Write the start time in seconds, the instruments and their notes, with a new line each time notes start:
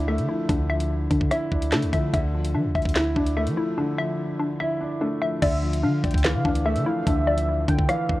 Already playing: 808-style bass D2, grand piano D3 F3 D4 E4, synth pluck D4 E4
0.08 grand piano A3, synth pluck E5
0.18 808-style bass D3, closed hi-hat
0.29 grand piano F3, synth pluck E4
0.49 808-style bass D2, grand piano D3, synth pluck D4, kick, closed hi-hat
0.70 grand piano F3, synth pluck E5
0.80 closed hi-hat
1.11 808-style bass D3, synth pluck D4, kick, closed hi-hat
1.21 kick
1.31 grand piano E4, synth pluck E5, cross-stick, closed hi-hat
1.52 808-style bass D2, grand piano D4, kick
1.62 closed hi-hat
1.72 808-style bass D3, grand piano A3, synth pluck D4, snare, clap, closed hi-hat
1.82 808-style bass D2, closed hi-hat
1.93 808-style bass D3, grand piano F3, synth pluck E5, kick, closed hi-hat
2.13 808-style bass D2, grand piano D3, synth pluck E5, kick, closed hi-hat
2.34 grand piano F3
2.45 closed hi-hat
2.55 808-style bass F3, synth pluck D4
2.65 808-style bass D2
2.75 808-style bass D2, synth pluck E5, kick, closed hi-hat
2.82 808-style bass D2, kick, closed hi-hat
2.89 closed hi-hat
2.95 grand piano E4, synth pluck E4, snare, clap, closed hi-hat
3.16 808-style bass D2, synth pluck D4, grand piano D4, kick
3.27 closed hi-hat
3.37 grand piano A3, synth pluck E5
3.47 808-style bass F3, closed hi-hat
3.57 grand piano F3, synth pluck E4
3.78 grand piano D3, synth pluck D4
3.98 grand piano F3, synth pluck E5
4.40 synth pluck D4
4.60 grand piano E4, synth pluck E5
4.81 grand piano D4
5.01 grand piano A3, synth pluck D4
5.22 grand piano F3, synth pluck E5
5.42 808-style bass D2, grand piano D3, synth pluck D5, soft synth lead E5, kick, closed hi-hat, crash
5.62 grand piano F3
5.73 closed hi-hat
5.83 808-style bass D3, synth pluck D4, soft synth lead F5
6.04 808-style bass D2, soft synth lead G5, kick, closed hi-hat
6.11 kick, closed hi-hat
6.18 closed hi-hat
6.24 synth pluck E3, grand piano E3, soft synth lead F5, snare, clap, closed hi-hat
6.35 808-style bass D3
6.45 808-style bass D2, grand piano D4, synth pluck D4, kick
6.55 closed hi-hat
6.65 grand piano A3, synth pluck E5, soft synth lead E5
6.76 808-style bass D3, closed hi-hat
6.86 grand piano F3, synth pluck E4, soft synth lead F5
7.07 808-style bass D2, grand piano D3, synth pluck D4, soft synth lead E5, kick, closed hi-hat
7.27 grand piano F3, synth pluck D5
7.38 closed hi-hat
7.68 808-style bass D3, synth pluck D4, soft synth lead G5, kick, closed hi-hat
7.79 kick
7.89 grand piano E3, synth pluck F5, soft synth lead F5, cross-stick, closed hi-hat
8.09 808-style bass D2, grand piano D4, kick